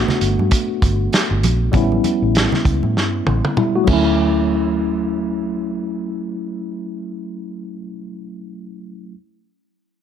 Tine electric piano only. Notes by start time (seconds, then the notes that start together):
Already playing: A3 B3 D4 F#4
1.72 G3 B3 C#4
1.76 E4
3.58 G3 E4
3.76 A3 F#4
3.84 F#3 A3
3.90 C#4 E4